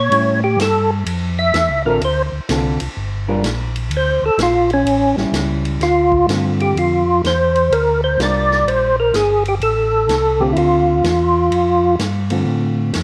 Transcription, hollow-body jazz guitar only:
0.12 G3 C#4 E4
1.85 D3 C4 F4 A4
2.50 D3 C4 F4 A4
3.28 G3 D4 F4 A#4
5.17 G3 C#4 E4
6.29 D3 A3 C4 F4
8.19 G3 D4 F4 A#4
10.40 D3 A3 C4 F4
12.30 D3 A3 C4 F4

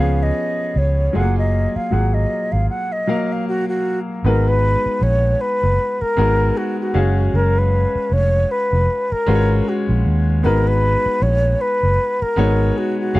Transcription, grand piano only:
Already playing: F3 B3 G4
0.00 C#4 G#4
1.13 F#3 A3 F4 G#4
1.21 A#3
1.91 F#3 A#3 F4 G#4
3.07 F#3 A#3 A#4 F5
4.24 G#3 B3 D#4 F#4 B4
6.17 G#3 B3 D#4 F#4 A#4
6.94 G#3 C#4 F#4 G#4 F5
9.26 G#3 C#4 F4 F#4 B4
9.35 C#5
10.43 G#3 B3 D#4 F#4 B4
12.36 G#3 B3 D#4 F#4 C#5
13.14 G#3 C#4 F#4 G#4 F5

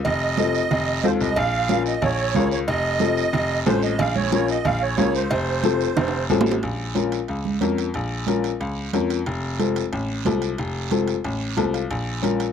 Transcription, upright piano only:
0.38 C4 F4 A4
1.04 C4 F4 A4
1.69 C#4 F4 A#4
2.35 C#4 F4 A#4
3.00 C4 F4 A4
3.66 C4 F4 A4
4.31 C#4 F4 A#4
4.98 C#4 F4 A#4
5.64 C4 F4 A4
6.30 C4 F4 A4
6.95 C#4 F4 A#4
7.60 C#4 F4 A#4
8.27 C#4 F4 A#4
8.93 C#4 F4 A#4
9.59 C4 F4 A4
10.25 C4 F4 A4
10.91 C4 F4 A4
11.57 C4 F4 A4 A5
11.74 F5
12.22 C#4 F4 A#4

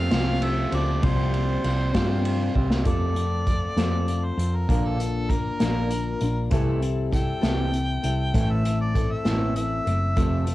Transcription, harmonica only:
Already playing: F5
0.43 E5
0.75 D5
1.05 C5
2.87 D5
4.25 C5
4.56 A#4
4.87 A4
5.31 A#4
7.14 G5
8.51 E5
8.81 D5
9.12 E5
9.56 E5

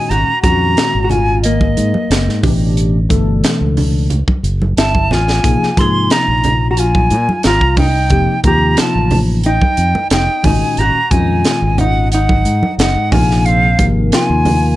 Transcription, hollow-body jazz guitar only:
Already playing: D#4
0.11 F#4
0.44 F#4
1.04 F#4
1.11 F4
1.45 A#3
4.79 E4
5.12 F4
5.80 G#4
6.12 F4
6.71 F#4
6.79 F4
7.47 F4
7.80 D#4
8.47 G4
8.80 F4
9.46 D#4
10.14 D#4
10.47 D#4
10.80 F#4
11.14 D#4
11.81 D#4
12.15 D#4
12.81 D#4
13.13 F4
13.47 C4
14.14 F4

